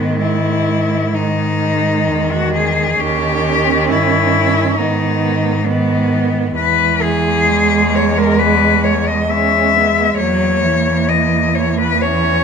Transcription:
0.00 2.10 G#2 medium
0.00 1.12 D#3 medium
0.00 1.12 G#3 medium
0.00 0.20 B3 medium
0.21 1.16 E4 medium
1.15 2.96 D#3 medium
1.15 2.96 G#3 medium
1.15 2.33 D#4 medium
2.08 2.99 E2 medium
2.32 2.54 F#4 medium
2.54 3.02 G#4 medium
3.00 3.91 D#2 medium
3.00 4.75 D#3 medium
3.00 4.80 C#4 medium
3.00 3.89 G4 medium
3.90 4.80 G2 medium
3.90 4.79 E4 medium
4.78 6.55 G#2 medium
4.78 5.65 D#3 medium
4.78 5.66 B3 medium
4.78 5.68 D#4 medium
5.66 6.55 D#3 soft
5.66 6.55 B3 medium
6.56 10.14 E2 medium
6.56 7.51 E3 medium
6.56 9.32 G#3 medium
6.56 7.04 B4 medium
7.02 7.97 G#4 medium
7.49 9.29 G#3 medium
7.95 8.19 C#5 medium
8.18 8.40 A#4 medium
8.39 8.86 B4 medium
8.84 9.09 C#5 medium
9.07 9.31 D#5 medium
9.30 10.20 G#3 soft
9.30 9.77 C#4 medium
9.30 10.17 E5 medium
9.76 10.20 B3 medium
10.17 12.44 E2 medium
10.17 10.64 F#3 medium
10.17 12.05 A#3 medium
10.17 11.10 C#5 medium
10.63 12.02 E3 medium
11.09 11.56 D#5 medium
11.55 11.79 C#5 medium
11.80 12.03 B4 medium
12.02 12.44 E3 medium
12.02 12.44 C#4 medium
12.02 12.44 C#5 medium

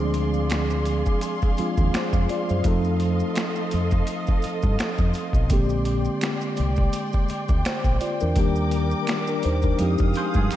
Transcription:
0.00 1.02 D2 loud
0.00 1.53 F3 medium
0.00 1.54 G#3 medium
0.00 1.54 C4 medium
0.00 1.55 D4 medium
0.00 1.55 G#4 medium
0.00 2.62 G#4 medium
0.00 2.61 D5 medium
0.00 5.46 F5 medium
0.00 8.32 C6 medium
0.14 closed hi-hat medium
0.14 maracas soft
0.34 maracas soft
0.50 finger snap medium
0.50 snare loud
0.50 closed hi-hat medium
0.50 maracas medium
0.70 maracas soft
0.85 closed hi-hat medium
0.85 maracas soft
1.06 kick medium
1.06 maracas soft
1.21 closed hi-hat medium
1.21 maracas medium
1.42 kick medium
1.42 maracas soft
1.57 2.63 F3 medium
1.57 2.65 G#3 medium
1.57 2.65 C4 soft
1.57 2.66 D4 soft
1.57 1.94 F4 medium
1.57 muted fingered electric bass stroke soft
1.57 closed hi-hat medium
1.57 maracas soft
1.77 1.91 D#2 medium
1.77 kick medium
1.77 maracas soft
1.94 2.13 C5 medium
1.94 finger snap medium
1.94 muted fingered electric bass stroke soft
1.94 snare loud
1.94 closed hi-hat medium
1.94 maracas medium
2.13 2.26 F2 medium
2.13 2.29 G#4 medium
2.13 2.29 F5 medium
2.13 kick medium
2.13 maracas soft
2.29 2.49 F4 medium
2.29 2.48 D5 medium
2.29 closed hi-hat medium
2.29 maracas soft
2.49 2.62 F#2 medium
2.49 2.83 C5 medium
2.49 maracas soft
2.64 3.21 F2 loud
2.64 5.46 F3 medium
2.64 5.46 A3 medium
2.64 5.47 C4 medium
2.64 5.47 D#4 medium
2.64 5.47 A4 medium
2.64 5.48 A4 medium
2.64 5.47 D#5 medium
2.64 kick loud
2.64 closed hi-hat medium
2.64 maracas medium
2.84 maracas soft
3.00 closed hi-hat medium
3.00 maracas soft
3.19 maracas soft
3.35 finger snap medium
3.35 snare loud
3.35 closed hi-hat medium
3.35 maracas medium
3.55 maracas soft
3.71 4.01 F2 medium
3.71 closed hi-hat medium
3.71 maracas soft
3.91 kick medium
3.91 maracas soft
4.07 closed hi-hat medium
4.07 maracas medium
4.27 kick loud
4.27 maracas soft
4.42 muted fingered electric bass stroke soft
4.42 closed hi-hat medium
4.42 maracas soft
4.62 4.76 G2 medium
4.62 kick medium
4.62 maracas soft
4.79 finger snap medium
4.79 snare loud
4.79 closed hi-hat medium
4.79 maracas medium
4.81 finger snap medium
4.81 muted fingered electric bass stroke medium
4.98 5.12 F2 medium
4.98 kick medium
4.98 maracas soft
5.14 closed hi-hat medium
5.14 maracas soft
5.33 5.52 B1 medium
5.33 kick medium
5.33 maracas soft
5.50 6.07 A#1 loud
5.50 8.32 D3 medium
5.50 8.32 G#3 medium
5.50 8.33 G#3 medium
5.50 8.33 A#3 medium
5.50 8.33 C4 medium
5.50 7.62 G4 medium
5.50 8.33 D5 medium
5.50 10.56 G5 medium
5.50 kick loud
5.50 closed hi-hat medium
5.50 maracas medium
5.69 maracas soft
5.85 closed hi-hat medium
5.85 maracas soft
6.05 maracas soft
6.21 finger snap medium
6.21 snare loud
6.21 closed hi-hat medium
6.21 maracas medium
6.24 finger snap loud
6.41 maracas soft
6.57 6.87 C2 medium
6.57 closed hi-hat medium
6.57 maracas soft
6.76 kick medium
6.76 maracas soft
6.93 closed hi-hat medium
6.93 maracas medium
7.13 kick medium
7.13 maracas soft
7.28 muted fingered electric bass stroke soft
7.28 closed hi-hat medium
7.28 maracas soft
7.48 7.62 D2 medium
7.48 kick medium
7.48 maracas soft
7.65 7.99 C5 medium
7.65 finger snap medium
7.65 muted fingered electric bass stroke soft
7.65 snare loud
7.65 closed hi-hat medium
7.65 maracas medium
7.84 7.98 A#1 medium
7.84 kick medium
7.84 maracas soft
8.00 8.20 F4 medium
8.00 8.19 D5 medium
8.00 closed hi-hat medium
8.00 maracas soft
8.20 8.37 E2 medium
8.20 8.37 D4 medium
8.20 8.55 A#4 medium
8.20 maracas soft
8.36 8.93 D#2 loud
8.36 9.76 D#3 medium
8.36 9.76 G3 medium
8.36 9.77 A#3 medium
8.36 8.72 D4 medium
8.36 8.73 G4 medium
8.36 9.77 A#4 medium
8.36 9.77 D5 medium
8.36 9.77 D6 medium
8.36 kick loud
8.36 closed hi-hat medium
8.36 maracas medium
8.56 maracas soft
8.71 closed hi-hat medium
8.71 maracas soft
8.91 maracas soft
9.07 finger snap medium
9.07 snare loud
9.07 closed hi-hat medium
9.07 maracas medium
9.09 finger snap medium
9.27 9.44 D4 medium
9.27 9.43 A#4 medium
9.27 maracas soft
9.42 9.72 D#2 medium
9.42 9.63 D#4 medium
9.42 9.63 C5 medium
9.42 closed hi-hat medium
9.42 maracas soft
9.62 9.98 D4 medium
9.62 9.98 A#4 medium
9.62 kick medium
9.62 maracas soft
9.79 9.95 F2 medium
9.79 10.56 F3 medium
9.79 10.56 G#3 medium
9.79 10.56 C4 medium
9.79 10.56 D#4 medium
9.79 10.56 G4 medium
9.79 10.56 F5 medium
9.79 10.56 D#6 medium
9.79 closed hi-hat medium
9.79 maracas medium
9.98 10.13 F2 medium
9.98 kick medium
9.98 maracas soft
10.14 10.35 C5 medium
10.14 closed hi-hat medium
10.14 maracas soft
10.18 10.35 G#4 medium
10.34 10.48 G2 medium
10.34 10.51 F4 medium
10.34 10.51 G#4 medium
10.34 kick medium
10.34 maracas soft
10.51 10.56 D#4 medium
10.51 10.56 G4 medium
10.51 finger snap medium
10.51 muted fingered electric bass stroke soft
10.51 closed hi-hat medium
10.51 maracas medium

